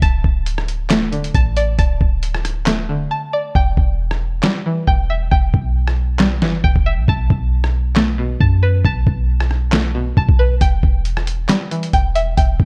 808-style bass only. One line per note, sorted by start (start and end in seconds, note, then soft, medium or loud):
0.02 0.23 D1 loud
0.24 1.31 D1 loud
1.35 1.77 A1 loud
1.79 2.00 D1 loud
2.01 3.07 D1 loud
3.55 3.76 E1 loud
3.77 4.41 E1 loud
4.87 5.30 E1 loud
5.32 5.53 E1 loud
5.54 6.43 B1 loud
6.42 6.63 G1 loud
6.64 6.75 E1 loud
6.76 6.99 E1 loud
6.98 7.08 B1 loud
7.08 7.29 B1 loud
7.30 8.37 B1 loud
8.40 8.83 F#2 loud
8.85 9.06 B1 loud
9.07 10.13 B1 loud
10.17 10.28 B1 loud
10.29 10.60 B1 loud
10.61 10.82 E1 loud
10.83 11.47 E1 loud
11.93 12.36 E1 loud
12.38 12.59 E1 loud
12.60 12.65 B1 loud